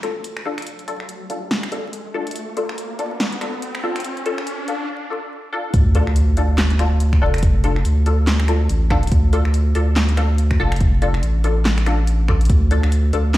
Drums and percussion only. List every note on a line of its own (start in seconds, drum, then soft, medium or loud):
0.03 finger snap medium
0.03 closed hi-hat medium
0.24 closed hi-hat medium
0.37 finger snap medium
0.58 finger snap medium
0.58 closed hi-hat medium
0.62 closed hi-hat medium
0.67 closed hi-hat medium
0.79 closed hi-hat soft
0.88 closed hi-hat medium
1.00 finger snap soft
1.09 closed hi-hat medium
1.30 closed hi-hat medium
1.51 snare loud
1.51 closed hi-hat medium
1.63 finger snap medium
1.63 closed hi-hat soft
1.72 closed hi-hat medium
1.93 closed hi-hat medium
2.27 closed hi-hat soft
2.31 closed hi-hat medium
2.36 closed hi-hat medium
2.57 closed hi-hat medium
2.69 finger snap medium
2.78 closed hi-hat medium
2.99 closed hi-hat medium
3.20 snare loud
3.20 closed hi-hat medium
3.32 closed hi-hat soft
3.41 finger snap medium
3.41 closed hi-hat medium
3.62 closed hi-hat medium
3.75 finger snap medium
3.96 finger snap medium
3.96 closed hi-hat soft
4.00 closed hi-hat medium
4.04 closed hi-hat medium
4.17 closed hi-hat soft
4.26 closed hi-hat medium
4.38 finger snap medium
4.47 closed hi-hat medium
4.68 closed hi-hat medium
5.74 kick loud
5.74 closed hi-hat medium
5.95 closed hi-hat medium
6.07 finger snap soft
6.16 closed hi-hat medium
6.37 closed hi-hat medium
6.58 snare loud
6.58 clap medium
6.58 closed hi-hat medium
6.70 closed hi-hat soft
6.79 finger snap medium
6.79 closed hi-hat medium
7.00 closed hi-hat medium
7.13 finger snap medium
7.13 kick medium
7.34 finger snap medium
7.34 closed hi-hat medium
7.38 closed hi-hat medium
7.43 kick loud
7.43 closed hi-hat medium
7.64 closed hi-hat medium
7.76 finger snap soft
7.85 closed hi-hat medium
8.06 closed hi-hat medium
8.27 snare loud
8.27 clap medium
8.27 closed hi-hat medium
8.40 finger snap medium
8.40 closed hi-hat soft
8.48 finger snap medium
8.48 closed hi-hat medium
8.69 closed hi-hat medium
8.90 finger snap medium
8.90 kick medium
9.03 closed hi-hat soft
9.07 closed hi-hat medium
9.12 kick loud
9.12 closed hi-hat medium
9.33 closed hi-hat medium
9.45 finger snap medium
9.54 closed hi-hat medium
9.75 closed hi-hat medium
9.96 snare loud
9.96 clap medium
9.96 closed hi-hat medium
10.09 closed hi-hat soft
10.17 finger snap medium
10.17 closed hi-hat medium
10.38 closed hi-hat medium
10.51 finger snap medium
10.51 kick medium
10.72 finger snap medium
10.72 closed hi-hat soft
10.76 closed hi-hat medium
10.81 kick loud
10.81 closed hi-hat medium
11.02 closed hi-hat medium
11.14 finger snap medium
11.23 closed hi-hat medium
11.44 closed hi-hat soft
11.65 snare loud
11.65 clap medium
11.65 closed hi-hat medium
11.78 finger snap medium
11.78 closed hi-hat soft
11.86 finger snap medium
11.86 closed hi-hat medium
12.07 closed hi-hat medium
12.28 finger snap medium
12.28 kick medium
12.41 closed hi-hat soft
12.45 closed hi-hat medium
12.50 kick loud
12.50 closed hi-hat medium
12.71 closed hi-hat medium
12.83 finger snap medium
12.92 closed hi-hat medium
13.13 closed hi-hat soft
13.34 snare loud
13.34 clap medium
13.34 closed hi-hat medium